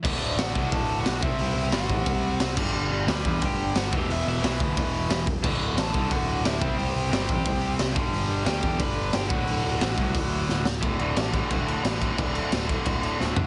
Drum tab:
CC |x-------|-------x|--------|--------|
HH |--o-o-o-|o-o-o-o-|--o-o-o-|o-o-o-o-|
SD |--o---o-|--o---o-|--o---o-|--o---o-|
FT |--------|--------|--------|--------|
BD |o--oo--o|---oo--o|---oo--o|---oo--o|

CC |x-------|--------|--------|--------|
HH |--o-o-o-|o-o-o-o-|o-o-o-o-|o-o-o---|
SD |--o---o-|--o---o-|--o---o-|--o---oo|
FT |--------|--------|--------|--------|
BD |o--oo--o|---oo--o|---oo--o|---oo---|

CC |xxxxxxxx|xxxxxx--|
HH |--------|--------|
SD |--o---o-|--o---o-|
FT |--------|-------o|
BD |o--oo--o|o--oo---|